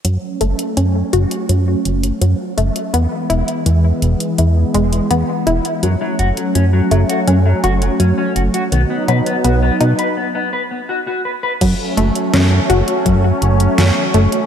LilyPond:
<<
  \new Staff \with { instrumentName = "Clean electric guitar" } { \time 4/4 \key fis \dorian \tempo 4 = 83 r1 | r1 | fis16 fis16 fis'16 fis16 cis'16 fis16 fis16 fis'16 fis16 fis16 fis'16 fis16 cis'16 cis'16 fis'16 fis'16 | b16 b16 b'16 b16 fis'16 b16 b16 b'16 b16 b16 b'16 b16 fis'16 fis'16 b'16 b'16 |
r1 | }
  \new Staff \with { instrumentName = "Analog synth pad" } { \time 4/4 \key fis \dorian <fis a cis'>1 | <e gis b>1 | <fis a cis'>1 | <fis b dis'>2 r2 |
<fis a cis'>1 | }
  \new Staff \with { instrumentName = "Synth arpeggio sound" } { \time 4/4 \key fis \dorian fis16 r16 a16 r16 cis'16 r16 fis'8 fis8 r8 fis16 r16 a16 r16 | b16 r16 e'8 e8 r8 e16 r16 gis16 r16 b16 r16 e'8 | fis8 r8 fis16 r16 a16 r16 cis'16 r16 fis'8 fis8 r8 | dis16 r16 fis16 r16 b16 r16 dis'8 r2 |
fis16 r16 a16 r16 cis'16 r16 fis'8 fis8 r8 fis16 r16 a16 r16 | }
  \new Staff \with { instrumentName = "Analog synth bass" } { \clef bass \time 4/4 \key fis \dorian fis,8 fis,,8 fis,8 fis,,8 fis,8 fis,,8 fis,8 fis,,8 | e,8 e,,8 e,8 e,,8 e,8 e,,8 e,8 e,,8 | fis,8 fis,,8 fis,8 fis,,8 fis,8 fis,,8 fis,8 fis,,8 | b,,8 b,8 b,,8 b,8 r2 |
fis,8 fis,,8 fis,8 fis,,8 fis,8 fis,,8 fis,8 fis,,8 | }
  \new DrumStaff \with { instrumentName = "Drums" } \drummode { \time 4/4 hh8 hh16 hh16 hh8 hh16 hh16 hh8 hh16 hh16 hh8 hh16 hh16 | hh8 hh16 hh16 hh8 hh16 hh16 hh8 hh16 hh16 hh8 hh16 hh16 | hh8 hh16 hh16 hh8 hh16 hh16 hh8 hh16 hh16 hh8 hh16 hh16 | hh8 hh16 hh16 hh8 hh16 hh16 r4 r4 |
<cymc hh bd>8 hh16 hh16 <hh sn>8 hh16 hh16 <hh bd>8 hh16 hh16 <hh sn>8 hh16 hh16 | }
>>